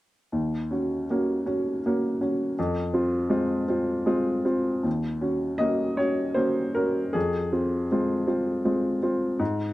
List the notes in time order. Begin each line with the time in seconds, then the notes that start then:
0.32 D#2
0.71 C#4 F#4
1.10 A#3 C#4 F#4
1.46 C#4 F#4
1.86 A#3 C#4 F#4
2.21 C#4 F#4
2.59 F2
2.93 C4 F4
3.29 G#3 C4 F4
3.68 C4 F4
4.06 G#3 C4 F4
4.45 C4 F4
4.83 D#2
5.21 C#4 F#4
5.58 A#3 C#4 F#4 D#5
5.97 C#4 F#4 C#5
6.34 A#3 C#4 F#4 C5
6.75 C#4 F#4 A#4
7.13 F2 G#4
7.52 C4 F4
7.92 G#3 C4 F4
8.27 C4 F4
8.65 G#3 C4 F4
9.03 C4 F4
9.39 G#2